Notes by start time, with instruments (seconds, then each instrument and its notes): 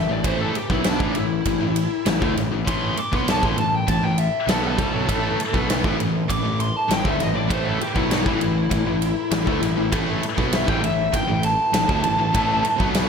0.09 picked electric bass A1, distorted electric guitar A2 E3, lead electric guitar D5
0.24 picked electric bass A1, distorted electric guitar A2 E3 A3, lead electric guitar C5, kick, ride
0.40 lead electric guitar A4
0.55 lead electric guitar G4, muted distorted electric guitar stroke, ride
0.70 picked electric bass B1, distorted electric guitar B2 F#3 B3, lead electric guitar E4, kick
0.84 lead electric guitar D4, snare, ride
1.00 picked electric bass A1, distorted electric guitar A2 E3, kick
1.15 picked electric bass A1, distorted electric guitar A2 E3, lead electric guitar E4, ride
1.45 picked electric bass A1, distorted electric guitar A2 E3, kick, ride
1.61 picked electric bass A1, distorted electric guitar A2 E3
1.76 ride
2.06 picked electric bass A1, distorted electric guitar A2 E3, snare, ride
2.21 picked electric bass D2, distorted electric guitar D3 A3, kick
2.36 picked electric bass A1, distorted electric guitar A2 E3, snare, ride
2.52 picked electric bass A1, distorted electric guitar A2 E3
2.65 picked electric bass A1, distorted electric guitar A2 E3 A3, lead electric guitar C6, kick, ride
2.96 lead electric guitar D6, muted distorted electric guitar stroke, muted picked electric bass stroke, ride
3.12 picked electric bass B1, distorted electric guitar B2 F#3 B3, lead electric guitar C6, kick
3.28 lead electric guitar A5, snare, ride
3.42 picked electric bass A1, distorted electric guitar A2 E3, lead electric guitar C6, kick
3.57 picked electric bass A1, distorted electric guitar A2 E3, lead electric guitar A5, ride
3.75 lead electric guitar G5
3.87 picked electric bass A1, distorted electric guitar A2 E3, lead electric guitar A5, kick, ride
4.02 picked electric bass A1, distorted electric guitar A2 E3, lead electric guitar G5
4.18 lead electric guitar E5, ride
4.47 picked electric bass B1, distorted electric guitar B2 F#3 B3, lead electric guitar A4, snare, ride
4.78 picked electric bass C2, distorted electric guitar C3 G3, kick, snare, ride
4.93 picked electric bass B1, distorted electric guitar B2 F#3
5.08 picked electric bass A1, distorted electric guitar A2 E3 A3, tonewheel organ A3 E4 B4, kick, ride
5.40 muted distorted electric guitar stroke, ride
5.54 picked electric bass B1, distorted electric guitar B2 F#3 B3, kick
5.70 snare, ride
5.84 picked electric bass A1, distorted electric guitar A2 E3, kick
6.00 picked electric bass A1, distorted electric guitar A2 E3, ride
6.29 picked electric bass A1, distorted electric guitar A2 E3, lead electric guitar D6, kick, ride
6.45 picked electric bass A1, distorted electric guitar A2 E3
6.60 lead electric guitar C6, ride
6.77 lead electric guitar A5
6.89 picked electric bass A1, distorted electric guitar A2 E3, lead electric guitar G5, snare, ride
7.05 picked electric bass D2, distorted electric guitar D3 A3, lead electric guitar E5, kick
7.20 picked electric bass A1, distorted electric guitar A2 E3, lead electric guitar D#5, snare, ride
7.35 picked electric bass A1, distorted electric guitar A2 E3, lead electric guitar D5
7.50 picked electric bass A1, distorted electric guitar A2 E3 A3, lead electric guitar C5, kick, ride
7.65 lead electric guitar A4
7.81 lead electric guitar G4, muted distorted electric guitar stroke, ride
7.95 picked electric bass B1, distorted electric guitar B2 F#3 B3, lead electric guitar E4, kick
8.11 lead electric guitar E4, snare, ride
8.26 picked electric bass A1, distorted electric guitar A2 E3, kick
8.41 picked electric bass A1, distorted electric guitar A2 E3, ride
8.71 picked electric bass A1, distorted electric guitar A2 E3, kick, ride
8.86 picked electric bass A1, distorted electric guitar A2 E3
9.02 ride
9.31 picked electric bass A1, distorted electric guitar A2 E3, snare, ride
9.46 picked electric bass D2, distorted electric guitar D3 A3, kick
9.61 picked electric bass A1, distorted electric guitar A2 E3, snare, ride
9.76 picked electric bass A1, distorted electric guitar A2 E3
9.92 picked electric bass A1, distorted electric guitar A2 E3 A3, kick, ride
10.23 muted distorted electric guitar stroke, ride
10.37 picked electric bass B1, distorted electric guitar B2 F#3 B3, kick
10.53 lead electric guitar E5, snare, ride
10.67 picked electric bass A1, distorted electric guitar A2 E3, lead electric guitar G5, kick
10.83 picked electric bass A1, distorted electric guitar A2 E3, lead electric guitar E5, ride
11.13 picked electric bass A1, distorted electric guitar A2 E3, lead electric guitar G5, kick, ride
11.28 picked electric bass A1, distorted electric guitar A2 E3
11.43 lead electric guitar A5, ride
11.74 picked electric bass A1, distorted electric guitar A2 E3, snare, ride
11.89 picked electric bass D2, distorted electric guitar D3 A3, kick
12.04 picked electric bass A1, distorted electric guitar A2 E3, ride
12.19 picked electric bass A1, distorted electric guitar A2 E3
12.34 picked electric bass A1, distorted electric guitar A2 E3 A3, kick, ride
12.64 muted distorted electric guitar stroke, ride
12.80 picked electric bass B1, distorted electric guitar B2 F#3 B3, kick
12.94 snare, ride